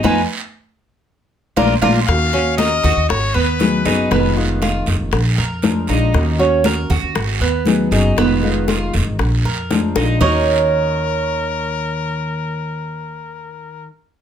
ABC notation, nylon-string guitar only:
X:1
M:4/4
L:1/8
Q:1/4=118
K:Ebm
V:1 name="Nylon-string guitar"
[CEF] z4 z [A,B,=D] [A,B,D] | [E,B,DG] [B,DG]3 z2 [G,CEA] [G,CEA] | [C,E,A,EF] [E,A,EF]3 z2 [F,A,=DF] [A,DF] | [E,B,DG] [B,DG]3 z2 [G,CEA] [G,CEA] |
[C,E,A,EF] [E,A,EF]3 z2 [F,A,=DF] [A,DF] | [E,B,DG]8- | [E,B,DG]8 |]